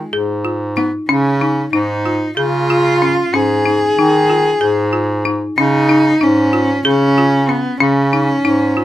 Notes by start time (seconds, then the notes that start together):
Already playing: G#3
0.13 G#2 G#4
0.45 F4
0.76 B3 D#4
1.09 C#3 C#4
1.41 D#4
1.73 G#2 D#4
2.06 F4
2.37 C#3 F4 G#4
2.70 F4
3.02 C#4
3.32 G#2 C#4 G#4
3.66 D#4
3.97 D#3 D#4
4.30 F4
4.61 G#2 G#4
4.93 F4
5.25 D#4
5.57 C#3 C#4 D#4
5.89 D#4
6.21 G#2 C#4 D#4
6.53 F4
6.85 C#3 C#4 G#4
7.18 F4
7.49 B3 C#4
7.80 C#3 C#4
8.13 D#4
8.44 G#2 D#4
8.77 F4